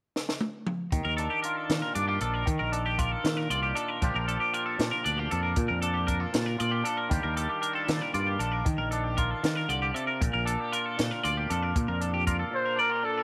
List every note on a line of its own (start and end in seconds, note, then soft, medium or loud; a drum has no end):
0.16 snare medium
0.29 snare medium
0.41 high tom medium
0.67 mid tom medium
0.92 1.03 D#2 medium
0.92 2.44 D#3 medium
0.92 kick medium
0.92 closed hi-hat medium
1.05 1.27 D#2 medium
1.05 1.16 A#4 medium
1.17 1.95 D4 medium
1.17 1.30 A4 medium
1.17 closed hi-hat medium
1.30 1.42 G4 medium
1.42 1.95 F4 soft
1.42 1.57 A#4 medium
1.42 closed hi-hat medium
1.57 1.82 A4 medium
1.69 2.44 A#2 medium
1.69 1.80 D#3 medium
1.69 snare medium
1.69 closed hi-hat medium
1.82 1.95 A#4 medium
1.95 2.17 G2 medium
1.95 2.09 D4 soft
1.95 2.07 D5 medium
1.95 closed hi-hat medium
2.07 2.47 F4 soft
2.07 2.21 G4 medium
2.21 2.43 A#1 medium
2.21 2.49 D4 medium
2.21 2.34 A4 medium
2.21 closed hi-hat medium
2.34 2.47 A#4 medium
2.46 3.98 D#3 medium
2.46 2.58 D#3 medium
2.46 kick medium
2.46 closed hi-hat medium
2.59 3.14 A#1 medium
2.59 2.72 A#4 medium
2.72 3.75 D4 medium
2.72 2.85 A4 medium
2.72 closed hi-hat medium
2.86 2.99 G4 medium
2.98 3.50 F4 medium
2.98 3.12 A#4 medium
2.98 kick medium
2.98 closed hi-hat medium
3.12 3.37 A4 medium
3.24 3.99 A#2 medium
3.24 3.46 D#3 medium
3.24 snare medium
3.24 closed hi-hat medium
3.37 3.50 A#4 medium
3.50 3.72 C2 medium
3.50 4.03 F4 soft
3.50 3.62 D5 medium
3.50 closed hi-hat medium
3.63 3.75 G4 medium
3.75 4.03 D4 soft
3.75 3.88 A4 medium
3.75 closed hi-hat medium
3.88 4.02 A#4 medium
4.02 4.13 A#1 medium
4.02 4.78 A#2 medium
4.02 7.10 F3 medium
4.02 4.28 D4 medium
4.02 4.53 F4 medium
4.02 7.13 G4 medium
4.02 kick medium
4.02 closed hi-hat medium
4.14 4.36 A#1 medium
4.14 4.27 A#4 medium
4.28 5.05 D4 medium
4.28 4.40 A4 medium
4.28 closed hi-hat soft
4.40 4.54 G4 medium
4.54 5.05 F4 medium
4.54 4.65 A#4 medium
4.54 closed hi-hat soft
4.66 4.91 A4 medium
4.79 5.53 A#2 medium
4.79 4.90 A#2 medium
4.79 snare medium
4.79 closed hi-hat medium
4.91 5.04 A#4 medium
5.04 5.27 D2 medium
5.04 5.19 D4 soft
5.04 5.18 D5 medium
5.04 closed hi-hat medium
5.17 5.57 F4 soft
5.17 5.31 G4 medium
5.31 5.53 F2 medium
5.31 5.83 D4 soft
5.31 5.42 A4 medium
5.31 closed hi-hat soft
5.43 5.56 A#4 medium
5.56 5.68 A#2 medium
5.56 6.31 A#2 medium
5.56 kick loud
5.56 closed hi-hat medium
5.68 6.24 F2 medium
5.68 5.81 A#4 medium
5.82 6.08 D4 medium
5.82 5.95 A4 medium
5.82 closed hi-hat medium
5.94 6.07 G4 medium
6.07 6.20 D4 medium
6.07 6.21 A#4 medium
6.07 kick medium
6.07 closed hi-hat medium
6.20 6.57 F4 soft
6.20 6.46 A4 medium
6.33 7.08 A#2 medium
6.33 6.56 A#2 medium
6.33 snare medium
6.33 closed hi-hat medium
6.46 6.60 A#4 medium
6.58 6.82 A#2 medium
6.58 7.12 F4 soft
6.58 6.73 D5 medium
6.58 closed hi-hat medium
6.71 6.85 G4 medium
6.84 7.11 D4 medium
6.84 6.98 A4 medium
6.84 closed hi-hat medium
6.97 7.11 A#4 medium
7.09 7.22 D#2 medium
7.09 8.62 D#3 medium
7.09 9.21 G3 medium
7.09 7.37 D4 medium
7.09 7.61 F4 soft
7.09 10.63 G4 medium
7.09 kick loud
7.09 closed hi-hat medium
7.23 7.46 D#2 medium
7.23 7.36 A#4 medium
7.37 7.61 D4 medium
7.37 7.50 A4 medium
7.37 closed hi-hat medium
7.49 7.63 G4 medium
7.61 7.73 D4 soft
7.61 7.75 A#4 medium
7.61 closed hi-hat medium
7.73 8.13 F4 soft
7.73 8.01 A4 medium
7.87 8.62 A#2 medium
7.87 8.00 D#3 medium
7.87 snare medium
7.87 closed hi-hat medium
8.01 8.14 A#4 medium
8.14 8.36 G2 medium
8.14 8.68 F4 soft
8.14 8.27 D5 medium
8.14 closed hi-hat medium
8.27 8.39 G4 medium
8.39 8.61 A#1 medium
8.39 8.68 D4 medium
8.39 8.52 A4 medium
8.39 closed hi-hat medium
8.52 8.65 A#4 medium
8.65 9.42 D#3 medium
8.65 8.77 D#3 medium
8.65 kick loud
8.65 closed hi-hat medium
8.78 9.32 A#1 medium
8.78 8.91 A#4 medium
8.91 10.45 D4 medium
8.91 9.04 A4 medium
8.91 closed hi-hat medium
9.04 9.17 G4 medium
9.17 10.72 F4 soft
9.17 9.30 A#4 medium
9.17 kick medium
9.17 closed hi-hat medium
9.30 9.56 A4 medium
9.43 9.68 D#3 medium
9.43 9.65 D#3 medium
9.43 snare medium
9.43 closed hi-hat medium
9.56 9.69 A#4 medium
9.69 9.91 C2 medium
9.69 9.94 D3 medium
9.69 9.82 D5 medium
9.69 closed hi-hat medium
9.82 9.94 G4 medium
9.94 10.20 C3 medium
9.94 10.07 A4 medium
9.94 closed hi-hat soft
10.07 10.20 A#4 medium
10.21 10.32 A#1 medium
10.21 10.98 A#2 medium
10.21 kick medium
10.21 closed hi-hat medium
10.33 10.55 A#1 medium
10.33 10.46 A#4 medium
10.45 11.49 D4 medium
10.45 10.60 A4 medium
10.45 closed hi-hat medium
10.60 10.73 G4 medium
10.72 11.24 F4 soft
10.72 10.85 A#4 medium
10.72 closed hi-hat medium
10.85 11.11 A4 medium
10.98 11.75 A#2 medium
10.98 11.10 A#2 medium
10.98 snare medium
10.98 closed hi-hat medium
11.11 11.23 A#4 medium
11.23 11.46 D2 medium
11.23 12.27 F4 medium
11.23 11.37 D5 medium
11.23 closed hi-hat medium
11.37 11.50 G4 medium
11.50 11.72 F2 medium
11.50 12.00 D4 medium
11.50 11.62 A4 medium
11.50 closed hi-hat medium
11.62 11.75 A#4 medium
11.76 12.50 A#2 medium
11.76 11.87 A#2 medium
11.76 kick loud
11.76 closed hi-hat medium
11.88 12.42 F2 medium
11.88 12.02 A#4 medium
12.01 12.75 D4 medium
12.01 12.13 A4 medium
12.01 closed hi-hat medium
12.14 12.26 G4 medium
12.27 12.76 F4 medium
12.27 12.39 A#4 medium
12.27 kick medium
12.27 closed hi-hat medium
12.39 12.65 A4 medium
12.51 13.23 A#2 medium
12.51 12.82 C5 medium
12.66 12.78 A#4 medium
12.76 12.90 D4 medium
12.76 13.06 A#4 medium
12.76 12.91 D5 medium
12.90 13.23 F4 soft
12.90 13.04 G4 medium
13.03 13.23 D4 soft
13.03 13.23 A4 medium
13.03 13.18 A4 medium
13.18 13.23 A#4 medium